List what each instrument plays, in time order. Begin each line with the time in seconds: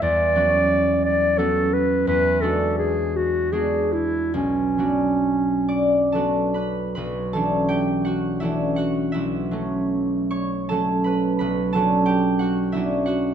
Already playing: harp B3 C#4
0.02 harp E2, clarinet D5
0.35 harp F#3 B3 C#4 F#4
1.05 clarinet D5
1.38 harp F#3 B3 C#4 F#4, clarinet A4
1.73 clarinet B4
2.07 harp E2, clarinet B4
2.41 harp G#3 B3 D4 F#4, clarinet A4
2.78 clarinet G#4
3.16 clarinet F#4
3.52 harp G#3 B3 D4 F#4, clarinet G#4
3.93 clarinet E4
4.34 harp B1, clarinet C#4
4.78 harp F#3 B3 D4 F#4
5.68 harp D5 D6
6.12 harp F#3 B3 D4 F#4 A4 A5
6.54 harp B4 B5
6.95 harp B1 B4 B5
7.33 harp E3 A3 C#4 D4 A4 A5
7.69 harp G4 G5
8.05 harp F#4 F#5
8.40 harp E3 A3 C#4 E4 E5
8.45 harp D4
8.76 harp F#4 F#5
9.12 harp B1 E4 E5
9.51 harp F#3 A3 C#4
10.31 harp C#5 C#6
10.69 harp F#3 A3 C#4 A4 A5
11.04 harp B4 B5
11.39 harp B1 B4 B5
11.73 harp F#3 B3 C#4 A4 A5
11.77 harp D4
12.06 harp G4 G5
12.39 harp F#4 F#5
12.72 harp F#3 B3 D4 E4 E5
12.77 harp C#4
13.06 harp F#4 F#5